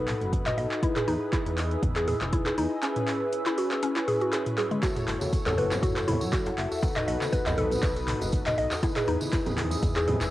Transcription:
Already playing: analog synth bass B1, analog polysynth D#4 F#4 A4 B4, analog synth pad A4 F#5 B5 D#6
0.08 clap, mid tom, open hi-hat
0.21 analog synth bass F#1, closed hi-hat
0.33 kick, closed hi-hat
0.46 synth pluck D#5, clap, closed hi-hat, mid tom
0.58 analog synth bass B1, analog polysynth D#4 F#4 A4 D#5, synth pluck D#5, open hi-hat
0.71 clap
0.83 analog polysynth D#4 E4 G#4 B4, synth pluck E4, analog synth pad B4 G#5 D#6 E6, kick, closed hi-hat
0.96 synth pluck G#4, clap, closed hi-hat, mid tom
1.08 analog synth bass E2, synth pluck D#4, open hi-hat
1.33 synth pluck E4, kick, clap, closed hi-hat
1.46 analog synth bass E2, closed hi-hat
1.58 clap, open hi-hat
1.71 closed hi-hat
1.83 analog synth bass E2, kick, closed hi-hat, mid tom
1.96 synth pluck G#4, clap, closed hi-hat
2.08 synth pluck G#4, mid tom, open hi-hat
2.21 analog synth bass E1, clap, closed hi-hat
2.33 synth pluck E4, kick, closed hi-hat
2.46 synth pluck G#4, clap, closed hi-hat
2.58 analog synth bass E2, analog polysynth D#4 E4 G#4 D#5, synth pluck D#4, open hi-hat
2.83 analog polysynth C#4 E4 G#4 B4, synth pluck C#4, analog synth pad C#6, clap, closed hi-hat
2.96 closed hi-hat, mid tom
3.08 clap, open hi-hat
3.33 closed hi-hat
3.46 synth pluck E4, clap, closed hi-hat
3.58 synth pluck F#4, open hi-hat
3.71 clap, closed hi-hat
3.83 synth pluck C#4, closed hi-hat
3.96 synth pluck E4, clap, closed hi-hat
4.08 synth pluck G#4, mid tom, open hi-hat
4.21 analog polysynth C#4 E4 G#4 B4, synth pluck F#4, closed hi-hat
4.33 synth pluck G#4, clap, closed hi-hat
4.46 closed hi-hat, mid tom
4.58 synth pluck G#4, clap, open hi-hat, high tom
4.71 synth pluck G#3, closed hi-hat, mid tom
4.83 analog polysynth E4 F#4 A4 C#5, synth pluck F#4, analog synth pad A4 F#5, kick, clap, closed hi-hat, tambourine, djembe slap
4.96 closed hi-hat, mid tom, tambourine, djembe tone
5.08 analog synth bass F#1, clap, open hi-hat
5.21 tambourine, high conga, djembe tone
5.33 kick, closed hi-hat, tambourine
5.46 analog synth bass F#1, synth pluck A4, clap, closed hi-hat, tambourine, low conga, djembe bass
5.58 synth pluck B4, open hi-hat, high conga, djembe tone
5.71 clap, closed hi-hat, tambourine, low conga
5.83 analog synth bass F#1, synth pluck F#4, kick, closed hi-hat, mid tom, tambourine, high conga, djembe tone, djembe bass
5.96 synth pluck A4, clap, closed hi-hat, tambourine
6.08 synth pluck E4, mid tom, open hi-hat, high conga, djembe tone, low conga
6.21 analog synth bass F#2, closed hi-hat, tambourine
6.32 synth pluck F#4, kick, clap, closed hi-hat, tambourine
6.46 closed hi-hat, tambourine, djembe slap, djembe tone
6.58 analog synth bass F#1, analog polysynth E4 F#4 A4 E5, clap, open hi-hat
6.72 tambourine, djembe tone
6.82 analog polysynth D#4 F#4 A4 B4, analog synth pad B5 D#6, kick, closed hi-hat, tambourine, djembe slap
6.96 synth pluck D#5, clap, closed hi-hat, mid tom, tambourine, djembe tone
7.08 analog synth bass B1, synth pluck D#5, open hi-hat
7.21 clap, tambourine, high conga
7.33 synth pluck B4, kick, closed hi-hat, tambourine, djembe tone
7.46 analog synth bass B1, synth pluck D#5, clap, closed hi-hat, tambourine, djembe bass, low conga
7.57 synth pluck A4, open hi-hat, high conga, djembe tone
7.71 closed hi-hat, tambourine, low conga
7.83 analog synth bass B1, synth pluck B4, kick, clap, closed hi-hat, tambourine, djembe tone
7.96 closed hi-hat, tambourine
8.07 clap, mid tom, open hi-hat, high conga
8.21 analog synth bass F#1, closed hi-hat, tambourine, djembe tone, high conga
8.32 kick, closed hi-hat, tambourine
8.46 synth pluck D#5, clap, closed hi-hat, mid tom, tambourine, djembe tone, high conga
8.58 analog synth bass B1, analog polysynth D#4 F#4 A4 D#5, synth pluck D#5, open hi-hat
8.71 clap, tambourine, djembe tone
8.83 analog polysynth D#4 E4 G#4 B4, synth pluck E4, analog synth pad B4 G#5 D#6 E6, kick, closed hi-hat, tambourine, djembe slap
8.96 synth pluck G#4, clap, closed hi-hat, mid tom, tambourine
9.08 analog synth bass E2, synth pluck D#4, open hi-hat, djembe tone
9.21 tambourine, high conga
9.33 synth pluck E4, kick, clap, closed hi-hat, tambourine, djembe tone
9.46 analog synth bass E2, closed hi-hat, tambourine, djembe bass, low conga
9.58 clap, open hi-hat, high conga, djembe tone
9.70 closed hi-hat, tambourine, low conga
9.82 analog synth bass E2, kick, closed hi-hat, mid tom, tambourine, high conga, djembe bass
9.96 synth pluck G#4, clap, closed hi-hat, tambourine, djembe tone
10.07 synth pluck G#4, mid tom, open hi-hat, high conga, low conga
10.21 analog synth bass E1, clap, closed hi-hat, tambourine, djembe tone

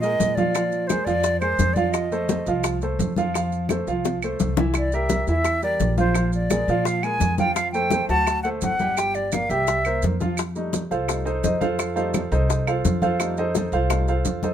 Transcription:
Already playing: upright bass A#2
0.00 grand piano G#3 G#4 A#4, flute D#5, high bongo, high conga, maracas
0.20 upright bass A#2, high bongo, low bongo, high conga, maracas
0.35 grand piano F3 F4 F5, flute D5, high bongo, high conga, maracas
0.55 grand piano F3 F4 F5, high bongo, high conga, claves, maracas
0.72 high conga, maracas
0.87 grand piano G#3 G#4 A#4, flute C5, high bongo, high conga, claves, maracas
1.05 upright bass F2, grand piano F3 F4 F5, flute D5, high bongo, high conga, maracas
1.24 high bongo, high conga, maracas
1.40 grand piano G#3 G#4 A#4, flute C5, high bongo, high conga, claves, maracas
1.59 upright bass F2, high bongo, low bongo, high conga, maracas
1.74 grand piano F3 F4 F5, flute D5, high bongo, high conga, maracas
1.92 flute D#5, high bongo, high conga, claves, maracas
2.11 grand piano A3 A4 C5, high conga, maracas
2.29 grand piano A3 A4 C5, high bongo, high conga, maracas
2.46 upright bass C2, grand piano F3 F4 F5, high bongo, high conga, maracas
2.64 high bongo, high conga, claves, maracas
2.81 grand piano A3 A4 C5, high bongo, high conga, maracas
2.99 upright bass F2, high bongo, low bongo, high conga, maracas
3.16 grand piano F3 F4 F5, high bongo, high conga, maracas
3.34 grand piano F3 F4 F5, high bongo, high conga, claves, maracas
3.52 high conga, maracas
3.69 grand piano A3 A4 C5, high bongo, high conga, claves, maracas
3.87 upright bass C2, grand piano F3 F4 F5, high bongo, high conga, maracas
4.05 high bongo, high conga, maracas
4.22 grand piano A3 A4 C5, high conga, claves, maracas
4.40 upright bass C2, low bongo, high conga, maracas
4.57 grand piano E3 E4 E5, low bongo, high conga, maracas
4.74 high bongo, high conga, claves, maracas
4.78 flute D5
4.92 grand piano G3 G4 A#4, flute E5, high conga, maracas
5.09 grand piano G3 G4 A#4, high bongo, high conga, maracas
5.27 upright bass E2, grand piano E3 E4 E5, flute E5, high bongo, high conga, maracas
5.45 high bongo, high conga, claves, maracas
5.62 grand piano G3 G4 A#4, flute D5, high bongo, high conga, maracas
5.80 upright bass A#1, high bongo, low bongo, high conga, maracas
5.98 grand piano F3 F4 F5, flute C5, high bongo, high conga, maracas
6.15 grand piano F3 F4 F5, high bongo, high conga, claves, maracas
6.33 flute D5, high conga, maracas
6.50 grand piano G#3 G#4 A#4, high bongo, high conga, claves, maracas
6.68 upright bass A#2, grand piano F3 F4 F5, high bongo, high conga, maracas
6.85 flute F5, high bongo, high conga, maracas
7.03 grand piano G#3 G#4 A#4, flute G#5, high bongo, high conga, claves, maracas
7.20 upright bass F2, high bongo, low bongo, high conga, maracas
7.38 grand piano F3 F4 F5, flute G5, high bongo, high conga, maracas
7.55 flute F5, high bongo, high conga, claves, maracas
7.72 grand piano A3 A4 C5, flute G5, high conga, maracas
7.90 grand piano A3 A4 C5, high bongo, high conga, maracas
8.09 upright bass D2, grand piano F#3 F#4 F#5, flute A5, high bongo, high conga, maracas
8.27 high bongo, high conga, claves, maracas
8.43 grand piano A3 A4 C5, flute F#5, high bongo, high conga, maracas
8.61 upright bass G1, flute F#5, high bongo, low bongo, high conga, maracas
8.79 grand piano G3 G4 G5, high bongo, high conga, maracas
8.97 grand piano G3 G4 G5, flute G5, high bongo, high conga, claves, maracas
9.15 flute D5, high conga, maracas
9.32 grand piano A#3 A#4 D5, flute F5, high bongo, high conga, claves, maracas
9.50 upright bass C2, grand piano G3 G4 G5, flute E5, high bongo, high conga, maracas
9.67 high bongo, high conga, maracas
9.85 grand piano A#3 A#4 C5, high bongo, high conga, claves, maracas
10.02 upright bass F2, high bongo, low bongo, high conga, maracas
10.20 grand piano F3 F4 F5, high bongo, high conga, maracas
10.37 high bongo, high conga, claves, maracas
10.55 grand piano G3 A3 D#4, high conga, maracas
10.73 high bongo, high conga, maracas
10.91 upright bass C2, grand piano F4 A4 C5 F5, high bongo, high conga, maracas
11.08 grand piano G3 A3 D#4, high bongo, high conga, claves, maracas
11.25 grand piano D#4 A4 C5 D#5, high bongo, high conga, maracas
11.44 upright bass F2, grand piano D#4 A4 C5 D#5, high bongo, low bongo, high conga, maracas
11.61 grand piano F4 A4 C5 F5, high bongo, high conga, maracas
11.79 high bongo, high conga, claves, maracas
11.95 grand piano G3 A3 D#4 F4 A4 C5 F5, high conga, maracas
12.14 high bongo, high conga, claves, maracas
12.32 upright bass C2, grand piano D#4 A4 C5 D#5, high bongo, high conga, maracas
12.49 grand piano D#4 A4 C5 D#5, high bongo, high conga, maracas
12.67 grand piano F4 A4 C5 F5, high bongo, high conga, claves, maracas
12.85 upright bass F2, high bongo, low bongo, high conga, maracas
13.02 grand piano F4 A4 C5 F5, high bongo, high conga, maracas
13.20 grand piano G3 A3 D#4, high bongo, high conga, claves, maracas
13.37 grand piano D#4 A4 C5 D#5, high conga, maracas
13.55 grand piano D#4 A4 C5 D#5, high bongo, high conga, maracas
13.72 upright bass C2, grand piano F4 A4 C5 F5, high bongo, high conga, maracas
13.90 grand piano G3 A3 D#4, high bongo, high conga, claves, maracas
14.08 grand piano F4 A4 C5 F5, high bongo, high conga, maracas
14.25 upright bass F2, high bongo, low bongo, high conga, maracas
14.43 grand piano D#4 A4 C5 D#5, high bongo, high conga, maracas

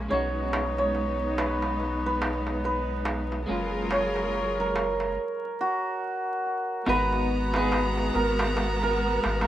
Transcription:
Already playing: string section G#3
0.09 sub bass B1, clean electric guitar G#3 C#4 D#4, string section B3 D#4, hammered dulcimer C#5, darbuka tek
0.14 clean electric guitar F#4
0.53 darbuka tek
0.78 hammered dulcimer C#5, darbuka tek
0.95 darbuka tek
1.38 hammered dulcimer B4, darbuka tek
1.62 darbuka tek
1.80 darbuka tek
2.06 hammered dulcimer B4
2.22 darbuka tek
2.47 darbuka tek
2.64 hammered dulcimer B4, darbuka tek
3.05 darbuka tek
3.32 darbuka tek
3.47 sub bass F#1, string section F#3 F4 G#4 A#4, clean electric guitar G#3 A#3 C#4, darbuka tek
3.51 clean electric guitar F4
3.91 hammered dulcimer C#5, darbuka tek
4.16 darbuka tek
4.33 darbuka tek
4.60 hammered dulcimer A#4
4.76 darbuka tek
5.00 darbuka tek
5.61 hammered dulcimer F#4
6.86 sub bass G#1, string section G#3 B3 F#4 A#5, clean electric guitar B3 D#4 F#4 B4, hammered dulcimer B4, darbuka tek
7.13 darbuka tek
7.53 clean electric guitar B3 D#4 F#4, hammered dulcimer B4, darbuka tek
7.58 clean electric guitar G#4
7.72 darbuka tek
7.97 darbuka tek
8.15 sub bass G#1, hammered dulcimer A#4
8.39 darbuka tek
8.57 darbuka tek
8.82 hammered dulcimer A#4, darbuka tek
9.24 sub bass G#1, darbuka tek
9.41 hammered dulcimer A#4, darbuka tek

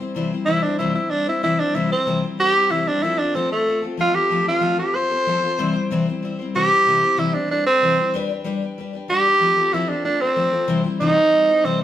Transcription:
0.00 steel-string acoustic guitar G3 C4 E4 C5
0.15 steel-string acoustic guitar C3 E3 G3 C4 E4 C5
0.32 steel-string acoustic guitar G3 C4 E4 C5
0.45 steel-string acoustic guitar C3 E3 G3 C4 E4 C5, tenor saxophone E4
0.63 steel-string acoustic guitar G3 C4 E4 C5, tenor saxophone D4
0.78 steel-string acoustic guitar C3 E3 G3 C4 E4 C5, tenor saxophone E4
0.94 steel-string acoustic guitar G3 C4 E4 C5, tenor saxophone E4
1.10 steel-string acoustic guitar G3 C4 E4 C5, tenor saxophone D4
1.27 steel-string acoustic guitar G3 C4 E4 C5, tenor saxophone E4
1.43 steel-string acoustic guitar C3 E3 G3 C4 E4 C5, tenor saxophone E4
1.59 steel-string acoustic guitar G3 C4 E4 C5, tenor saxophone D4
1.74 steel-string acoustic guitar C3 E3 G3 C4 E4 C5, tenor saxophone E4
1.90 steel-string acoustic guitar G3 C4 E4 C5, tenor saxophone C4
2.06 steel-string acoustic guitar C3 E3 G3 C4 E4 C5
2.22 steel-string acoustic guitar G3 C4 E4 C5
2.38 steel-string acoustic guitar G3 C4 E4 C5, tenor saxophone G4
2.54 steel-string acoustic guitar G3 C4 E4
2.69 steel-string acoustic guitar C3 E3 G3 C4 E4 C5, tenor saxophone E4
2.85 steel-string acoustic guitar G3 C4 E4 C5, tenor saxophone D4
3.03 steel-string acoustic guitar F3 A3 C4 F4 A4, tenor saxophone E4
3.19 steel-string acoustic guitar C4 F4 A4, tenor saxophone D4
3.35 steel-string acoustic guitar F3 A3 C4 F4 A4, tenor saxophone C4
3.51 tenor saxophone A3, steel-string acoustic guitar C4 F4 A4
3.66 steel-string acoustic guitar A3 C4 F4 A4
3.82 steel-string acoustic guitar C4 F4 A4
3.97 steel-string acoustic guitar F3 A3 C4 F4 A4, tenor saxophone F4
4.14 steel-string acoustic guitar C4 F4 A4, tenor saxophone G4
4.30 steel-string acoustic guitar F3 A3 C4 F4 A4
4.45 steel-string acoustic guitar C4 F4 A4, tenor saxophone F4
4.61 steel-string acoustic guitar F3 A3 C4 F4 A4
4.78 steel-string acoustic guitar C4 F4 A4, tenor saxophone G4
4.94 steel-string acoustic guitar A3 C4 F4 A4, tenor saxophone C5
5.11 steel-string acoustic guitar C4 F4 A4
5.27 steel-string acoustic guitar F3 A3 C4 F4 A4
5.41 steel-string acoustic guitar C4 F4 A4
5.58 steel-string acoustic guitar C3 E3 G3 C4 E4 C5
5.73 steel-string acoustic guitar G3 C4 E4 C5
5.91 steel-string acoustic guitar C3 E3 G3 C4 E4 C5
6.08 steel-string acoustic guitar G3 C4 E4 C5
6.22 steel-string acoustic guitar G3 C4 E4 C5
6.39 steel-string acoustic guitar G3 C4 E4 C5
6.55 steel-string acoustic guitar C3 E3 G3 C4 E4 C5, tenor saxophone G4
6.70 steel-string acoustic guitar G3 C4 E4 C5
6.86 steel-string acoustic guitar C3 E3 G3 C4 E4 C5
7.02 steel-string acoustic guitar G3 C4 E4 C5
7.17 steel-string acoustic guitar C3 E3 G3 C4 E4 C5, tenor saxophone E4
7.33 steel-string acoustic guitar G3 C4 E4 C5, tenor saxophone D4
7.48 steel-string acoustic guitar G3 C4 E4 C5, tenor saxophone D4
7.65 tenor saxophone C4, steel-string acoustic guitar C4 E4 C5
7.82 steel-string acoustic guitar C3 E3 G3 C4 E4 C5
7.97 steel-string acoustic guitar G3 E4 C5
8.14 steel-string acoustic guitar G3 D4 G4 B4
8.29 steel-string acoustic guitar D4 G4 B4
8.44 steel-string acoustic guitar G3 D4 G4 B4
8.62 steel-string acoustic guitar D4 G4 B4
8.78 steel-string acoustic guitar G3 D4 G4 B4
8.93 steel-string acoustic guitar D4 G4 B4
9.08 steel-string acoustic guitar G3 D4 G4 B4, tenor saxophone G4
9.24 steel-string acoustic guitar D4 G4 B4
9.40 steel-string acoustic guitar F3 A3 C4 F4 A4
9.56 steel-string acoustic guitar C4 F4 A4
9.73 steel-string acoustic guitar F3 A3 C4 F4 A4, tenor saxophone E4
9.89 steel-string acoustic guitar C4 F4 A4, tenor saxophone D4
10.04 steel-string acoustic guitar A3 C4 F4 A4, tenor saxophone D4
10.21 tenor saxophone C4, steel-string acoustic guitar C4 F4 A4
10.36 steel-string acoustic guitar F3 A3 C4 F4 A4
10.52 steel-string acoustic guitar C4 F4 A4
10.67 steel-string acoustic guitar C3 E3 G3 C4 E4 C5
10.84 steel-string acoustic guitar G3 C4 E4 C5
11.00 steel-string acoustic guitar C3 E3 G3 C4 E4 C5, tenor saxophone D#4
11.17 steel-string acoustic guitar G3 C4 E4 C5
11.32 steel-string acoustic guitar G3 C4 E4 C5
11.47 steel-string acoustic guitar G3 C4 E4 C5
11.64 steel-string acoustic guitar C3 E3 G3 C4 E4 C5, tenor saxophone C4
11.80 steel-string acoustic guitar C5

